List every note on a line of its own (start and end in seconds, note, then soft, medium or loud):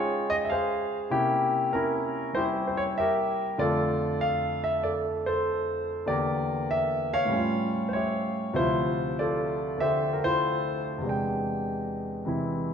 0.00 1.10 C#3 soft
0.00 1.10 G#3 soft
0.00 1.10 C#4 soft
0.00 0.46 D#4 medium
0.00 1.08 F4 medium
0.00 0.50 G#4 medium
0.00 0.31 C#5 medium
0.00 1.11 G5 soft
0.30 0.35 D#5 medium
0.45 0.49 E5 medium
0.50 1.08 G#4 medium
0.50 1.08 C5 medium
0.50 0.98 F5 medium
1.10 3.58 C3 medium
1.10 3.59 A#3 soft
1.10 1.73 C#4 soft
1.10 1.73 E4 medium
1.10 1.69 G4 medium
1.73 2.94 C#4 medium
1.73 2.35 E4 medium
1.73 2.37 A#4 medium
2.33 3.58 G3 soft
2.33 3.56 E4 medium
2.33 2.98 G4 medium
2.33 2.42 C5 medium
2.67 2.77 C5 medium
2.77 2.82 C#5 medium
2.98 3.56 G4 medium
2.98 3.56 A#4 medium
2.98 3.46 E5 medium
3.58 6.06 F2 soft
3.58 6.05 D3 soft
3.58 6.07 A3 soft
3.58 6.07 F4 medium
3.58 4.80 A4 medium
3.58 4.23 D5 medium
4.21 4.60 F5 medium
4.64 4.84 E5 medium
4.83 5.27 A4 medium
4.83 4.93 D5 medium
5.26 6.04 A4 medium
5.26 5.84 C5 medium
6.06 7.30 E2 soft
6.06 7.31 D3 soft
6.06 7.31 A#3 soft
6.06 7.31 G4 medium
6.06 7.28 A#4 medium
6.06 6.71 D5 medium
6.71 7.13 E5 medium
7.14 7.92 C#5 medium
7.14 8.32 F5 medium
7.25 8.52 A2 soft
7.25 8.54 G3 soft
7.33 8.56 C#4 soft
7.33 8.57 F4 medium
7.89 7.93 C5 medium
7.93 8.52 G4 soft
7.93 8.57 C#5 medium
7.93 8.52 E5 soft
8.54 11.02 D2 medium
8.54 10.99 C3 soft
8.54 11.03 F3 medium
8.54 9.19 C5 medium
8.54 9.79 E5 medium
8.58 9.76 E4 soft
8.58 9.19 F4 soft
9.19 10.23 F4 medium
9.19 9.80 A4 medium
9.19 9.82 D5 medium
9.78 11.02 D3 soft
9.78 11.03 D4 soft
9.78 11.04 G4 soft
9.78 11.00 A4 medium
9.78 10.13 E5 medium
9.82 10.23 C5 medium
10.13 10.22 A#4 medium
10.24 11.01 E4 medium
10.24 11.00 F4 medium
10.24 10.81 C5 medium
10.98 12.74 E2 soft
10.98 12.23 C3 soft
11.03 12.74 G#3 soft
11.03 12.74 D4 soft
11.09 12.74 G5 medium
12.25 12.74 C3 soft
12.25 12.74 E3 soft
12.25 12.74 C4 soft
12.25 12.74 E4 soft